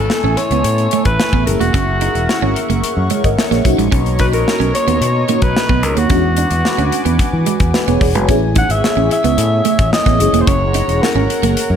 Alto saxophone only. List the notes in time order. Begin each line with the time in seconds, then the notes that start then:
Already playing: A4
0.38 C#5
1.06 B4
1.46 A#4
1.60 F#4
4.20 B4
4.34 A#4
4.75 C#5
5.43 B4
5.85 A#4
5.98 F#4
8.58 F#5
8.71 E5
9.13 E5
9.93 D#5
10.41 C5
10.48 C#5
11.02 A#4